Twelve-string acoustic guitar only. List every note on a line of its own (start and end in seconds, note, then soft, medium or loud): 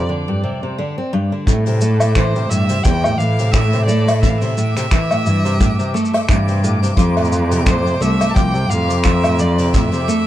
0.09 0.26 D3 medium
0.28 0.41 G2 medium
0.44 0.61 C3 medium
0.63 0.76 C3 medium
0.78 0.95 D3 medium
0.98 1.11 C4 medium
1.13 1.31 G2 loud
1.32 1.45 D3 medium
1.48 1.64 A2 medium
1.67 1.80 C3 medium
1.81 1.98 A3 medium
2.01 2.14 A3 medium
2.16 2.33 E3 medium
2.36 2.49 C3 medium
2.50 2.67 A2 medium
2.70 2.78 C3 medium
2.85 3.02 E3 medium
3.04 3.18 A2 medium
3.19 3.36 E3 medium
3.39 3.52 C3 medium
3.55 3.71 A2 medium
3.73 3.87 C3 medium
3.88 4.05 A3 loud
4.07 4.21 A3 medium
4.23 4.40 E3 medium
4.42 4.55 C3 medium
4.58 4.74 A2 medium
4.77 4.85 C3 medium
4.92 5.09 E3 medium
5.11 5.24 A2 medium
5.26 5.43 E3 medium
5.45 5.59 C3 medium
5.60 5.77 A2 medium
5.79 5.93 C3 medium
5.94 6.12 A3 loud
6.13 6.27 A3 medium
6.29 6.46 E3 medium
6.49 6.62 C3 medium
6.64 6.81 A2 medium
6.83 6.91 C3 medium
6.98 7.15 F3 medium
7.17 7.31 A2 medium
7.32 7.50 F3 medium
7.51 7.65 C3 medium
7.66 7.84 A2 medium
7.86 8.00 C3 medium
8.00 8.18 A3 medium
8.20 8.34 A3 medium
8.35 8.53 F3 medium
8.54 8.68 C3 medium
8.69 8.87 A2 medium
8.88 8.98 C3 medium
9.04 9.22 F3 medium
9.24 9.38 A2 medium
9.40 9.57 F3 medium
9.58 9.72 C3 medium
9.73 9.91 A2 medium
9.92 10.06 C3 medium
10.08 10.25 A3 loud